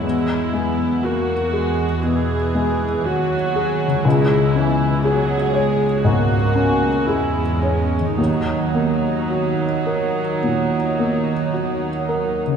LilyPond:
<<
  \new Staff \with { instrumentName = "Felt piano" } { \time 4/4 \key cis \dorian \tempo 4 = 59 e,8 gis8 fis'8 gis'8 b,8 gis8 fis'8 gis'8 | cis,8 cis'8 gis'8 cis''8 gis,8 cis'8 gis'8 cis''8 | dis,8 ais8 fis'8 ais'8 ais,8 ais8 fis'8 ais'8 | }
  \new Staff \with { instrumentName = "Harp" } { \time 4/4 \key cis \dorian <fis gis e' fis'>1 | <cis cis' e' gis'>1 | <dis ais dis' fis'>1 | }
  \new Staff \with { instrumentName = "Viola section" } { \time 4/4 \key cis \dorian << { e'4 fis'4 gis'4 fis'4 | e'4 gis'4 fis'4 e'8 cis'8 | dis'1 | } \\ { gis8 b8 ais8 gis8 e4 fis4 | gis8 e8 fis8 gis8 ais4 gis4 | fis1 | } >> }
  \new Staff \with { instrumentName = "Cello section" } { \clef bass \time 4/4 \key cis \dorian e,2. dis,4 | cis,2. e,4 | dis,1 | }
>>